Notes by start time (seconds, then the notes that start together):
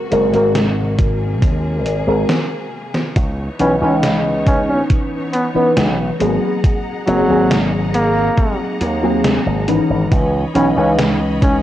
Already playing: C3 G#3 A#3 F#4
0.11 F#1 G#3 C4 F#4 A#4, closed hi-hat
0.32 G#1 G#3 C4 F#4 A#4, closed hi-hat
0.55 snare, closed hi-hat
0.98 G#4, kick, closed hi-hat
1.42 D#2, kick, closed hi-hat
1.86 G#1, closed hi-hat
2.07 G#1 G#3 C4 F#4 A#4
2.29 snare
2.94 snare
3.16 C#2 E3 B3 D#4 C#5, kick, closed hi-hat
3.59 B1 E3 C#4 D#4 B4, closed hi-hat
3.80 C#2 E3 C#4 D#4 B4
4.03 snare, closed hi-hat
4.46 C#4, kick, closed hi-hat
4.68 C#4
4.90 kick, closed hi-hat
5.33 B3, closed hi-hat
5.54 E3 B3 C#4 D#4 B4, muted slap bass stroke
5.77 B1, snare, closed hi-hat
6.20 G#1 F#3 A#3 C4 D#4 G#4 F#5 A#5, closed hi-hat
6.64 kick, closed hi-hat
7.07 F#1 F#3 A#3 C4 G#4, closed hi-hat
7.28 G#1 F#3 A#3 C4 G#4
7.51 snare, closed hi-hat
7.94 A#3, closed hi-hat
8.38 kick, closed hi-hat
8.81 D#2, closed hi-hat
9.03 F#3 A#3 C4 G#4
9.25 snare, closed hi-hat
9.46 G#1
9.67 E3 C#4 D#4 B4, closed hi-hat
9.90 G#1
10.12 C#2 E3 C#5 D#5 B5, kick, closed hi-hat
10.55 B1 E3 C#4 D#4 B4, closed hi-hat
10.76 C#2 E3 C#4 D#4 B4
10.99 snare, closed hi-hat
11.42 C#4, kick, closed hi-hat